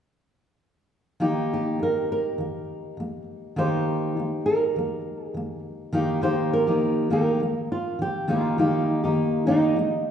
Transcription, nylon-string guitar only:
1.54 1.82 G4 medium
1.83 2.11 A#4 medium
2.12 3.54 A#4 medium
3.59 4.45 C5 medium
4.46 5.24 A#4 medium
5.24 5.60 G#4 medium
6.23 6.53 C5 medium
6.53 7.11 A#4 medium
7.13 7.71 A#4 medium
7.72 8.01 F4 medium
8.02 8.28 G4 medium
8.31 8.91 F4 medium
8.91 9.14 D#4 medium
9.47 10.11 D#4 medium

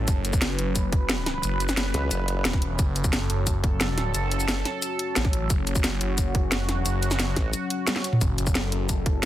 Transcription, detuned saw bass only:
0.08 0.57 F#1 loud
0.59 1.42 F#1 loud
1.43 1.93 F#1 loud
2.45 2.78 E1 loud
2.79 3.28 F#1 loud
3.30 4.13 F#1 loud
4.15 4.64 F#1 loud
5.16 5.49 A1 loud
5.50 6.00 F#1 loud
6.01 6.60 F#1 loud
6.60 6.84 F1 loud
6.86 7.35 F#1 loud
8.21 8.71 F#1 loud
8.72 9.25 F#1 loud

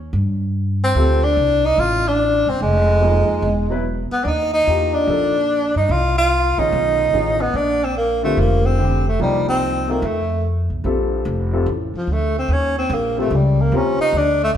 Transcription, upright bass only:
0.13 0.91 G2 medium
0.95 1.34 D2 medium
1.36 1.75 C2 medium
1.78 2.42 A1 medium
2.46 2.59 E1 medium
2.60 3.24 F1 medium
3.29 muted upright bass stroke soft
3.42 4.07 E1 medium
4.11 muted upright bass stroke soft
4.25 4.63 D#2 medium
4.67 5.05 E2 medium
5.07 5.72 A#1 medium
5.76 5.88 G2 medium
5.89 6.54 C2 medium
6.58 6.71 A#1 medium
6.72 7.11 B1 medium
7.13 7.52 A1 medium
7.54 8.33 A#1 medium
8.37 9.16 F1 medium
9.20 9.98 C2 medium
10.02 10.66 F2 medium
10.70 10.83 B1 medium
10.84 11.24 A#1 medium
11.25 11.65 F1 medium
11.66 11.92 A1 medium
11.94 muted upright bass stroke soft
12.07 12.47 D2 medium
12.48 12.89 D#2 medium
12.90 13.30 A#1 loud
13.30 13.71 C#2 medium
13.72 13.97 D#2 medium
14.00 muted upright bass stroke soft
14.13 14.53 D2 medium

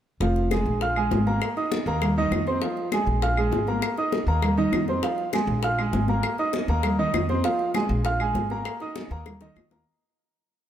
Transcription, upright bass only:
0.20 0.63 F1 medium
0.66 1.08 A#1 medium
1.11 1.38 G#1 medium
1.86 2.28 D#2 medium
2.31 2.58 F2 medium
3.07 3.49 A#1 medium
3.52 3.79 G#1 medium
4.27 4.69 D#2 medium
4.72 4.99 F2 medium
5.47 5.90 A#1 medium
5.93 6.20 G#1 medium
6.68 7.11 D#2 medium
7.14 7.40 F2 medium
7.89 8.32 A#1 medium
8.35 8.62 G#1 medium
9.11 9.53 D#2 medium
9.56 9.83 D#2 medium

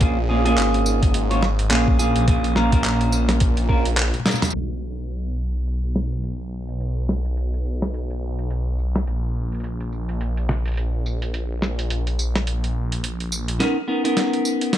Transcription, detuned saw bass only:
0.01 0.56 A#1 medium
0.58 1.13 G#1 medium
1.15 1.70 G#1 medium
1.71 2.14 A#1 loud
2.16 2.54 A#1 medium
2.56 3.39 A#1 loud
3.41 3.83 A#1 loud
3.86 4.12 A#1 loud
4.55 9.05 B1 medium
9.07 13.58 A#1 medium

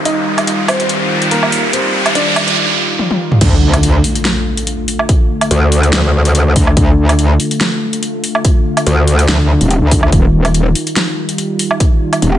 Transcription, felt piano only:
0.05 0.61 D#4 medium
0.05 0.61 D#5 loud
0.68 1.24 C4 medium
0.68 1.24 C5 loud
1.31 1.62 A#3 medium
1.31 1.62 A#4 medium
1.73 2.04 C4 medium
1.73 2.04 C5 medium
2.15 2.57 D4 medium
2.15 2.57 D5 medium

